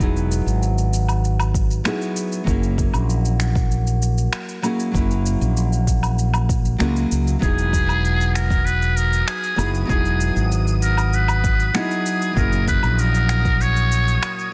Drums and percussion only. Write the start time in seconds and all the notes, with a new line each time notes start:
0.00 kick, shaker
0.17 shaker
0.32 shaker
0.48 shaker
0.63 shaker
0.78 shaker
0.93 shaker
1.09 low woodblock, shaker
1.25 shaker
1.40 low woodblock, shaker
1.54 kick, shaker
1.71 shaker
1.85 finger snap, shaker
2.02 shaker
2.16 shaker
2.32 shaker
2.47 kick, shaker
2.63 shaker
2.78 kick, shaker
2.94 low woodblock, shaker
3.10 shaker
3.25 shaker
3.40 finger snap, shaker
3.55 kick, shaker
3.71 shaker
3.87 shaker
4.02 shaker
4.18 shaker
4.33 finger snap, shaker
4.49 shaker
4.63 low woodblock, shaker
4.80 shaker
4.94 kick, shaker
5.11 shaker
5.26 shaker
5.42 shaker
5.57 shaker
5.72 shaker
5.87 kick, shaker
6.03 low woodblock, shaker
6.19 shaker
6.34 low woodblock, shaker
6.49 kick, shaker
6.65 shaker
6.80 finger snap, shaker
6.96 shaker
7.12 shaker
7.27 shaker
7.42 kick, shaker
7.58 shaker
7.73 kick, shaker
7.89 low woodblock, shaker
8.05 shaker
8.21 shaker
8.35 finger snap, shaker
8.50 kick, shaker
8.67 shaker
8.82 shaker
8.97 shaker
9.13 shaker
9.28 finger snap, shaker
9.44 shaker
9.58 low woodblock, shaker
9.75 shaker
9.89 kick, shaker
10.05 shaker
10.21 shaker
10.36 shaker
10.52 shaker
10.67 shaker
10.82 shaker
10.97 low woodblock, shaker
11.13 shaker
11.28 low woodblock, shaker
11.44 kick, shaker
11.60 shaker
11.75 finger snap, shaker
11.91 shaker
12.06 shaker
12.22 shaker
12.37 kick, shaker
12.53 shaker
12.68 kick, shaker
12.83 low woodblock, shaker
12.99 shaker
13.15 shaker
13.29 finger snap, shaker
13.45 kick, shaker
13.61 shaker
13.77 shaker
13.92 shaker
14.08 shaker
14.23 finger snap, shaker
14.39 shaker